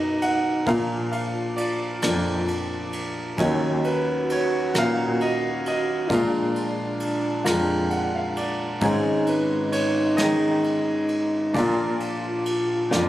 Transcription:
Already playing: grand piano B1 B2 F#3 B3 D#4 A#4 B4 D#5, french horn D#4
0.22 grand piano F#5, ride
0.67 grand piano A#1 A#2 F3 A#3 D4 A#4 D5 F5, cello A#2, french horn F4, kick, ride
1.12 grand piano F5, ride
1.56 grand piano D5, ride
2.02 cello F2, grand piano F3 A#3 D4 A#4 D5, cross-stick, ride
2.48 ride
2.93 ride
3.38 cello D#2, grand piano D#2 D#3 F#3 C#4 D#4 C#5, french horn F#4, kick, ride
3.84 grand piano B4, ride
4.30 grand piano C#5, ride
4.74 cello A#2, grand piano F#3 C#4 D#4 A#4, cross-stick, ride
4.78 grand piano F5
5.21 grand piano D#5, ride
5.66 grand piano D#5, ride
6.09 grand piano A#1 A#2 G#3 D4 F4 A#4 D5 F5, cello A#2, french horn D4, kick, ride
6.56 ride
7.00 ride
7.44 cello F2, grand piano G#3 D4 F4 A#4, cross-stick, ride
7.90 grand piano F#5, ride
8.15 grand piano F5
8.36 grand piano D5, ride
8.81 grand piano G#1 G#2 G#3 C#4 D#4 C#5, cello G#2, french horn D#4, kick, ride
9.27 grand piano B4, ride
9.72 grand piano C#5, ride
10.17 cello D#3, grand piano G#3 C#4 D#4 G#4 C#5 D#5, snare, ride
10.64 ride
11.08 ride
11.54 grand piano A#1 A#2 A#3 D4 F4 D5, cello A#2, french horn F4, kick, ride
12.00 ride
12.46 ride
12.91 cello F2, grand piano A#3 D4 F4 D5, snare

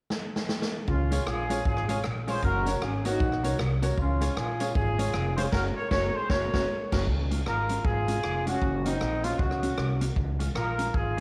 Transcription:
0.10 snare
0.36 snare
0.49 snare
0.62 snare
0.87 upright bass C#2, horn section C#4 F4, kick
1.11 clean electric guitar G#3 C#4 F4, upright piano F4 G#4 C#5, closed hi-hat, tambourine
1.26 upright bass A#1, horn section F4 G#4, cross-stick
1.49 clean electric guitar G#3 C#4 F4, upright piano F4 G#4 C#5, closed hi-hat, tambourine
1.65 upright bass G#1, horn section F4 G#4, upright piano G#4 C#5, kick
1.77 cross-stick
1.88 clean electric guitar G#3 C#4 F4, upright piano F4 G#4 C#5, closed hi-hat, tambourine
2.04 upright bass A#1, cross-stick
2.27 clean electric guitar G#3 C#4 F4, upright piano F4 G#4 C#5, horn section G#4 C5, open hi-hat, tambourine
2.42 upright bass F#1, horn section F#4 A#4, kick, hi-hat pedal
2.66 clean electric guitar A#3 C#4 F#4, upright piano F#4 A#4 C#5, closed hi-hat, tambourine
2.82 upright bass G#1, horn section C#4 G#4, cross-stick
3.05 clean electric guitar A#3 C#4 F#4, horn section D#4 F#4, upright piano F#4 A#4 C#5, closed hi-hat, tambourine
3.20 upright bass A#1, upright piano A#4 C#5, kick
3.32 cross-stick
3.43 upright bass C2, clean electric guitar A#3 C#4 F#4, upright piano F#4 A#4 C#5, closed hi-hat, tambourine
3.59 upright bass C2, cross-stick
3.82 clean electric guitar A#3 C#4 F#4, upright piano F#4 A#4 C#5, closed hi-hat, tambourine
3.98 upright bass C#2, horn section C#4 F4, kick
4.21 clean electric guitar G#3 C#4 F4, upright piano F4 G#4 C#5, closed hi-hat, tambourine
4.36 upright bass A#1, horn section F4 G#4, cross-stick
4.59 clean electric guitar G#3 C#4 F4, upright piano F4 G#4 C#5, closed hi-hat, tambourine
4.75 upright bass G#1, horn section F4 G#4, upright piano G#4 C#5, kick
4.98 clean electric guitar G#3 C#4 F4, upright piano F4 G#4 C#5, closed hi-hat, tambourine
5.14 upright bass F1, cross-stick
5.37 clean electric guitar G#3 C#4 F4, upright piano F4 G#4 C#5, horn section G#4 C5, closed hi-hat, tambourine
5.52 upright bass F#1, clean electric guitar A#3 C#4 F#4, upright piano F#4 A#4 C#5, horn section F#4 A#4, kick, snare, crash
5.76 horn section A#4 C#5
5.91 upright bass F#1, clean electric guitar A#3 C#4 F#4, upright piano F#4 A#4 C#5, horn section A#4 C#5, kick, snare
6.15 horn section G#4 C5
6.29 upright bass F#1, clean electric guitar A#3 C#4 F#4, upright piano F#4 A#4 C#5, horn section A#4 C#5, kick, snare
6.53 upright bass F#1, clean electric guitar A#3 C#4 F#4, upright piano F#4 A#4 C#5, kick, snare
6.92 upright bass F#1, clean electric guitar A#3 C#4 F#4, upright piano F#4 A#4 C#5, kick, snare, crash
7.07 upright bass C#2, kick
7.31 clean electric guitar G#3 C#4 F4, closed hi-hat
7.46 upright bass G#1, horn section F4 A#4, cross-stick
7.69 clean electric guitar G#3 C#4 F4, closed hi-hat
7.85 upright bass G#1, horn section F4 G#4, kick
8.08 clean electric guitar G#3 C#4 F4, closed hi-hat
8.23 upright bass F1, cross-stick
8.46 clean electric guitar G#3 C#4 F4, horn section C#4 F#4, closed hi-hat
8.62 upright bass F#1, kick
8.86 clean electric guitar A#3 C#4 F#4, horn section C4 D#4, closed hi-hat
9.01 upright bass A#1, cross-stick
9.24 clean electric guitar A#3 C#4 F#4, horn section C#4 F4, closed hi-hat
9.39 upright bass C#2, horn section C#4 F#4, kick
9.51 cross-stick
9.63 clean electric guitar A#3 C#4 F#4, closed hi-hat
9.78 upright bass C2, cross-stick
10.01 clean electric guitar A#3 C#4 F#4, closed hi-hat
10.16 upright bass C#2, kick
10.39 clean electric guitar G#3 C#4 F4, closed hi-hat
10.55 upright bass A#1, horn section F4 A#4, cross-stick
10.78 clean electric guitar G#3 C#4 F4, closed hi-hat
10.94 upright bass G#1, horn section F4 G#4, kick
11.17 clean electric guitar G#3

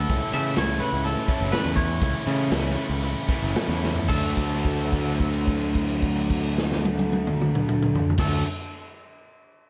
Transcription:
Already playing: clean electric guitar A4
0.08 picked electric bass C#2, overdriven electric guitar C#3 E3 A3 C#4 E4, kick, closed hi-hat
0.33 picked electric bass C#3, distorted electric guitar C#3 E3, overdriven electric guitar A3 C#4 E4, clean electric guitar E5, closed hi-hat
0.55 picked electric bass C#2, distorted electric guitar C#3, overdriven electric guitar E3 A3 C#4 E4, clean electric guitar C#5, snare, closed hi-hat
0.79 overdriven electric guitar C#3 E3 A3 C#4 E4, clean electric guitar B4, closed hi-hat
0.93 picked electric bass C#2
1.02 overdriven electric guitar E3 A3 C#4 E4, clean electric guitar A4, closed hi-hat
1.18 snare
1.28 overdriven electric guitar C#3 E3 A3 C#4 E4, kick, closed hi-hat
1.41 picked electric bass F#1
1.52 distorted electric guitar C#3, overdriven electric guitar E3 A3 C#4 E4, clean electric guitar B4, snare, closed hi-hat
1.65 picked electric bass E2
1.76 overdriven electric guitar A3 C#4 E4, clean electric guitar C#5, kick, closed hi-hat
2.00 picked electric bass C#2, overdriven electric guitar C#3 E3 A3 C#4 E4, kick, closed hi-hat
2.25 picked electric bass C#3, distorted electric guitar C#3 E3, overdriven electric guitar A3 C#4 E4, closed hi-hat
2.50 picked electric bass C#2, distorted electric guitar C#3, overdriven electric guitar E3 A3 C#4 E4, snare, closed hi-hat
2.76 overdriven electric guitar C#3 E3 A3 C#4 E4, closed hi-hat
2.90 picked electric bass C#2
3.02 overdriven electric guitar E3 A3 C#4 E4, closed hi-hat
3.28 overdriven electric guitar C#3 E3 A3 C#4 E4, kick, closed hi-hat
3.42 picked electric bass F#1
3.55 distorted electric guitar C#3, overdriven electric guitar E3 A3 C#4 E4, snare, closed hi-hat
3.68 picked electric bass E2
3.83 overdriven electric guitar A3 C#4 E4, snare
3.96 floor tom
4.09 picked electric bass D2, overdriven electric guitar D3 D4 F#4, distorted electric guitar F#3 A3, clean electric guitar A4, kick, crash
4.13 overdriven electric guitar A4
4.37 kick, crash
4.51 crash
4.65 kick, crash
4.79 crash
4.93 kick, crash
5.06 crash
5.20 kick, crash
5.34 crash
5.48 kick, crash
5.61 crash
5.75 kick, crash
5.89 crash
6.02 kick, crash
6.16 crash
6.30 kick, crash
6.43 crash
6.58 snare
6.72 snare
6.85 high tom
6.99 high tom
7.13 high tom
7.27 mid tom
7.41 mid tom
7.55 mid tom
7.69 mid tom
7.82 mid tom
7.95 floor tom
8.10 floor tom
8.18 picked electric bass D2, overdriven electric guitar D3 D4 F#4, distorted electric guitar F#3 A3, clean electric guitar A4, kick, snare, crash
8.22 overdriven electric guitar A4

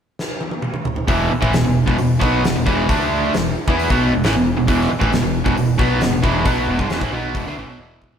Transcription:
0.19 snare
0.41 high tom
0.51 high tom
0.62 mid tom
0.74 mid tom
0.85 floor tom
0.96 floor tom
1.08 picked electric bass E1, overdriven electric guitar E2 B2 E3, kick, open hi-hat
1.31 muted overdriven electric guitar stroke
1.41 picked electric bass A1, overdriven electric guitar A2 E3, kick
1.52 picked electric bass E1, overdriven electric guitar E2 B2, snare, open hi-hat
1.65 picked electric bass E1, overdriven electric guitar E2 B2
1.86 picked electric bass E1, overdriven electric guitar E2 B2, kick
1.98 picked electric bass E1, overdriven electric guitar E2 B2, open hi-hat
2.19 picked electric bass B1, overdriven electric guitar B2 F#3 B3, kick
2.44 picked electric bass E1, overdriven electric guitar E2 B2, snare, open hi-hat
2.56 picked electric bass E1, overdriven electric guitar E2 B2
2.65 picked electric bass E1, overdriven electric guitar E2 B2 E3, kick
2.89 picked electric bass D2, overdriven electric guitar D3 A3 D4, kick, open hi-hat
3.34 picked electric bass E1, overdriven electric guitar E2 B2, snare, open hi-hat
3.68 picked electric bass E2, overdriven electric guitar E3 B3 E4, kick
3.79 open hi-hat
3.90 picked electric bass B1, overdriven electric guitar B2 F#3 B3, kick
4.13 picked electric bass E1, overdriven electric guitar E2 B2
4.24 picked electric bass A1, overdriven electric guitar A2 E3, snare, open hi-hat
4.35 picked electric bass E1, overdriven electric guitar E2 B2
4.57 picked electric bass E1, overdriven electric guitar E2 B2
4.67 picked electric bass E1, overdriven electric guitar E2 B2 E3, kick, open hi-hat
4.81 snare
4.90 muted overdriven electric guitar stroke, muted picked electric bass stroke
5.00 picked electric bass A1, overdriven electric guitar A2 E3, kick
5.12 picked electric bass E1, overdriven electric guitar E2 B2, snare, open hi-hat
5.22 picked electric bass E1, overdriven electric guitar E2 B2
5.44 picked electric bass E1, overdriven electric guitar E2 B2, kick
5.56 picked electric bass E1, overdriven electric guitar E2 B2, open hi-hat
5.78 picked electric bass B1, overdriven electric guitar B2 F#3 B3, kick
6.00 picked electric bass E1, overdriven electric guitar E2 B2, snare, open hi-hat
6.11 picked electric bass E1, overdriven electric guitar E2 B2
6.22 picked electric bass E1, overdriven electric guitar E2 B2 E3, kick
6.45 picked electric bass B1, overdriven electric guitar B2 F#3 B3, kick, open hi-hat
6.67 picked electric bass E1, overdriven electric guitar E2 B2
6.79 picked electric bass G1, overdriven electric guitar G2 D3, kick
6.90 picked electric bass E1, overdriven electric guitar E2 B2, snare, open hi-hat
7.01 picked electric bass A1, overdriven electric guitar A2 E3, kick
7.12 picked electric bass B1, overdriven electric guitar B2 F#3 B3
7.35 picked electric bass E1, overdriven electric guitar E2 B2, kick, open hi-hat
7.46 picked electric bass D2, overdriven electric guitar D3 A3
7.57 picked electric bass A1, overdriven electric guitar A2 E3
7.67 picked electric bass B1, overdriven electric guitar B2 F#3
7.78 picked electric bass E1, overdriven electric guitar E2 B2 E3, high tom
8.02 kick
8.12 picked electric bass A1, overdriven electric guitar A2 E3, floor tom

